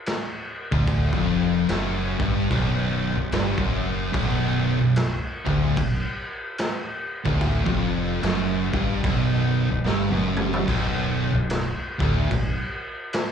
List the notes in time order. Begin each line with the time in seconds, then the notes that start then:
0.06 snare, crash
0.72 D1 D2, kick
0.87 kick, crash
1.12 F1 F2, kick
1.68 F#1 F#2, snare, crash
2.18 G1 G2, kick
2.49 B0 B1, kick, crash
3.17 B0 B1
3.32 G1 G2, snare, crash
3.58 F#1 F#2, kick
4.14 B0 B1, kick, crash
4.80 B0 B1
4.96 snare, crash
5.46 D1 D2, kick
5.77 B0 B1, kick, crash
6.58 snare, crash
7.25 D1 D2, kick
7.41 kick, crash
7.66 F1 F2, kick
8.23 F#1 F#2, snare, crash
8.74 G1 G2, kick
9.04 B0 B1, kick, crash
9.71 B0 B1
9.86 G1 G2, snare
10.10 F#1 F#2, high tom
10.37 mid tom
10.53 floor tom
10.66 B0 B1, kick, crash
11.31 B0 B1
11.50 snare, crash
11.99 D1 D2, kick
12.31 B0 B1, kick, crash
13.13 snare, crash